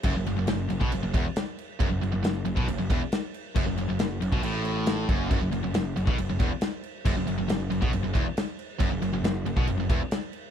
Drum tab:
CC |x-x-x-x-x-x-x-x-|x-x-x-x-x-x-x-x-|x-x-x-x-x-x-x-x-|x-x-x-x-x-x-x-x-|
SD |----o-------o---|----o-------o---|----o-------o---|----o-------o---|
BD |o------o--o-----|o------o--o-----|o------o------o-|o------o--o-----|

CC |x-x-x-x-x-x-x-x-|x-x-x-x-x-x-x-x-|
SD |----o-------o---|----o-------o---|
BD |o------o--o-----|o------o--o-----|